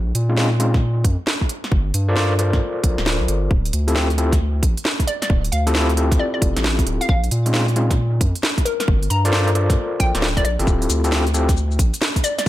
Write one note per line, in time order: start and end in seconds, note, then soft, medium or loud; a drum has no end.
0.00 0.13 A#1 medium
0.15 1.06 A#2 medium
0.15 closed hi-hat loud
0.29 0.35 G#3 medium
0.29 0.36 C4 medium
0.29 0.35 C#4 medium
0.29 0.35 D#4 medium
0.29 0.35 F4 medium
0.37 0.49 G#3 medium
0.37 0.48 C4 medium
0.37 0.49 C#4 medium
0.37 0.48 D#4 medium
0.37 0.48 F4 medium
0.37 snare loud
0.60 0.76 G#3 medium
0.60 0.76 C4 medium
0.60 0.76 C#4 medium
0.60 0.76 D#4 medium
0.60 0.76 F4 loud
0.60 closed hi-hat medium
0.74 kick medium
0.74 snare soft
1.04 1.17 F2 loud
1.04 kick medium
1.04 closed hi-hat loud
1.27 snare loud
1.41 kick medium
1.49 closed hi-hat medium
1.64 snare soft
1.72 1.92 G1 loud
1.72 kick loud
1.94 2.59 G2 medium
1.94 closed hi-hat loud
2.09 2.15 F4 medium
2.09 2.15 A4 medium
2.09 2.15 A#4 medium
2.09 2.15 C5 medium
2.09 2.15 D5 loud
2.16 2.33 F4 medium
2.16 2.33 A4 medium
2.16 2.33 A#4 medium
2.16 2.33 C5 medium
2.16 2.33 D5 medium
2.16 snare loud
2.39 3.50 F4 medium
2.39 3.50 A4 medium
2.39 3.50 A#4 medium
2.39 3.50 C5 medium
2.39 3.50 D5 medium
2.39 closed hi-hat medium
2.53 kick medium
2.53 snare soft
2.84 2.96 A#1 medium
2.84 kick medium
2.84 closed hi-hat loud
2.98 3.20 D1 medium
2.98 snare medium
3.06 snare loud
3.21 3.27 A#1 loud
3.28 3.48 G1 loud
3.28 closed hi-hat medium
3.51 3.71 D1 loud
3.51 kick loud
3.65 closed hi-hat soft
3.73 4.64 D2 medium
3.73 closed hi-hat loud
3.88 3.94 C4 medium
3.88 3.94 E4 medium
3.88 3.94 F4 medium
3.88 3.94 G4 medium
3.88 3.94 A4 medium
3.88 closed hi-hat medium
3.96 4.07 C4 medium
3.96 4.07 E4 medium
3.96 4.07 F4 medium
3.96 4.07 G4 medium
3.96 4.07 A4 medium
3.96 snare loud
4.10 closed hi-hat soft
4.18 4.34 C4 medium
4.18 4.34 E4 medium
4.18 4.34 F4 medium
4.18 4.34 G4 medium
4.18 4.34 A4 medium
4.18 closed hi-hat medium
4.32 kick loud
4.32 snare soft
4.32 closed hi-hat medium
4.63 4.75 A1 medium
4.63 kick loud
4.63 closed hi-hat loud
4.77 closed hi-hat medium
4.85 snare loud
5.00 kick medium
5.00 closed hi-hat soft
5.07 5.17 D5 medium
5.07 closed hi-hat medium
5.22 5.27 D5 medium
5.22 snare soft
5.22 closed hi-hat medium
5.30 5.50 D1 loud
5.30 kick loud
5.44 closed hi-hat soft
5.52 6.18 D2 medium
5.52 5.66 F5 medium
5.52 closed hi-hat loud
5.67 5.73 C4 medium
5.67 5.73 E4 medium
5.67 5.73 F4 medium
5.67 5.73 G4 medium
5.67 5.73 A4 loud
5.67 closed hi-hat medium
5.75 5.91 C4 medium
5.75 5.91 E4 medium
5.75 5.91 F4 medium
5.75 5.91 G4 medium
5.75 5.91 A4 medium
5.75 snare loud
5.89 closed hi-hat soft
5.97 7.08 C4 medium
5.97 7.08 E4 medium
5.97 7.08 F4 medium
5.97 7.08 G4 medium
5.97 7.08 A4 medium
5.97 closed hi-hat medium
6.12 kick loud
6.12 snare soft
6.12 closed hi-hat medium
6.19 6.29 D5 medium
6.34 6.39 D5 medium
6.42 6.54 F1 medium
6.42 kick loud
6.42 closed hi-hat loud
6.56 6.85 A1 medium
6.56 snare medium
6.56 closed hi-hat medium
6.64 snare loud
6.79 kick medium
6.79 closed hi-hat soft
6.87 6.99 D1 loud
6.87 closed hi-hat medium
7.01 7.06 F5 medium
7.01 closed hi-hat medium
7.09 7.29 A#1 loud
7.09 7.18 F5 medium
7.09 kick loud
7.24 closed hi-hat soft
7.31 8.22 A#2 medium
7.31 closed hi-hat loud
7.46 7.52 G#3 medium
7.46 7.52 C4 medium
7.46 7.52 C#4 medium
7.46 7.52 D#4 medium
7.46 7.52 F4 medium
7.46 closed hi-hat medium
7.54 7.65 G#3 medium
7.54 7.65 C4 medium
7.54 7.65 C#4 medium
7.54 7.65 D#4 medium
7.54 7.65 F4 medium
7.54 snare loud
7.68 closed hi-hat soft
7.76 7.92 G#3 medium
7.76 7.93 C4 medium
7.76 7.92 C#4 medium
7.76 7.92 D#4 medium
7.76 7.93 F4 medium
7.76 closed hi-hat medium
7.91 kick loud
7.91 snare soft
7.91 closed hi-hat medium
8.21 8.33 F2 loud
8.21 kick loud
8.21 closed hi-hat loud
8.35 closed hi-hat medium
8.43 snare loud
8.58 kick medium
8.58 closed hi-hat soft
8.65 8.75 A#4 medium
8.65 closed hi-hat medium
8.80 8.85 A#4 medium
8.80 snare soft
8.80 closed hi-hat medium
8.88 9.08 G1 loud
8.88 kick loud
9.03 closed hi-hat soft
9.10 9.76 G2 medium
9.10 9.24 A#5 medium
9.10 closed hi-hat loud
9.25 9.31 F4 medium
9.25 9.31 A4 medium
9.25 9.31 A#4 medium
9.25 9.31 C5 medium
9.25 9.31 D5 loud
9.25 closed hi-hat medium
9.33 9.49 F4 medium
9.33 9.49 A4 medium
9.33 9.49 A#4 medium
9.33 9.49 C5 medium
9.33 9.49 D5 medium
9.33 snare loud
9.47 closed hi-hat soft
9.55 10.12 F4 medium
9.55 10.12 A4 medium
9.55 10.12 A#4 medium
9.55 10.12 C5 medium
9.55 10.12 D5 medium
9.55 closed hi-hat medium
9.70 kick loud
9.70 snare soft
9.70 closed hi-hat medium
10.00 10.12 A#1 medium
10.00 10.14 G5 medium
10.00 kick loud
10.00 closed hi-hat loud
10.15 10.36 D1 medium
10.15 10.26 F4 medium
10.15 10.26 A4 medium
10.15 10.26 A#4 medium
10.15 10.26 C5 medium
10.15 10.26 D5 loud
10.15 snare medium
10.15 closed hi-hat medium
10.22 snare loud
10.37 10.44 D1 loud
10.37 10.43 F4 medium
10.37 10.43 A4 medium
10.37 10.43 A#4 medium
10.37 10.43 C5 medium
10.37 10.42 D5 medium
10.37 10.43 D5 medium
10.37 kick medium
10.37 closed hi-hat soft
10.45 10.57 A#1 medium
10.45 10.54 D5 medium
10.45 closed hi-hat medium
10.59 10.66 G1 medium
10.59 11.01 C4 medium
10.59 11.01 E4 medium
10.59 11.01 F4 medium
10.59 11.01 G4 medium
10.59 11.01 A4 medium
10.59 closed hi-hat medium
10.67 10.87 D1 loud
10.67 kick loud
10.67 shaker soft
10.82 closed hi-hat soft
10.82 shaker soft
10.89 11.80 D2 medium
10.89 closed hi-hat loud
10.89 shaker medium
11.04 11.10 C4 medium
11.04 11.10 E4 medium
11.04 11.10 F4 medium
11.04 11.10 G4 medium
11.04 11.10 A4 medium
11.04 closed hi-hat medium
11.04 shaker soft
11.12 11.23 C4 medium
11.12 11.23 E4 medium
11.12 11.23 F4 medium
11.12 11.23 G4 medium
11.12 11.23 A4 medium
11.12 snare loud
11.12 shaker soft
11.27 closed hi-hat soft
11.27 shaker soft
11.34 11.51 C4 medium
11.34 11.51 E4 medium
11.34 11.51 F4 medium
11.34 11.51 G4 medium
11.34 11.51 A4 medium
11.34 closed hi-hat medium
11.34 shaker medium
11.49 kick loud
11.49 snare soft
11.49 closed hi-hat medium
11.49 shaker soft
11.57 shaker soft
11.71 shaker soft
11.79 11.92 A1 loud
11.79 kick loud
11.79 closed hi-hat loud
11.79 shaker medium
11.94 closed hi-hat medium
11.94 shaker soft
12.02 snare loud
12.02 shaker soft
12.16 kick medium
12.16 closed hi-hat soft
12.16 shaker soft
12.24 12.33 D5 medium
12.24 closed hi-hat medium
12.24 shaker medium
12.38 12.43 D5 medium
12.38 snare soft
12.38 closed hi-hat medium
12.38 shaker soft